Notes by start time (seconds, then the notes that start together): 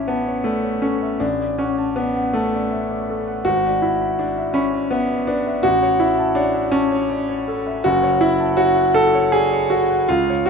Already playing: A1 C#4 D4 E4 C#5 E5 A5
0.08 B3 A5
0.28 C#5
0.44 A3 D5
0.64 C#5
0.82 C#4 A4
1.02 E5
1.20 A1 D4
1.41 D5
1.58 C#4 F#5
1.78 A5
1.96 B3 D5
2.16 F#5
2.33 A3 A5
2.54 D5
2.71 E5
2.90 D5
3.10 A4
3.28 F#5
3.45 G#1 F#4
3.65 D5
3.82 E4 E5
4.01 B5
4.19 D4 D5
4.38 E5
4.54 C#4 B5
4.74 D5
4.91 B3 E5
5.11 D5
5.27 D4 B4
5.47 E5
5.63 A1 F#4
5.83 C#5
6.00 E4 E5
6.19 A5
6.35 D4 C#5
6.54 E5
6.72 C#4 A5
6.92 C#5
7.10 D5
7.29 C#5
7.48 A4
7.67 E5
7.84 F#1 F#4
8.03 C#5
8.21 E4 F#5
8.40 A5
8.57 F#4 C#5
8.77 F#5
8.94 A4 A5
9.15 C#5
9.32 G#4 D5
9.53 C#5
9.70 F#4 A4
9.90 F#5
10.09 C#2 F4
10.30 C#5
10.46 F#4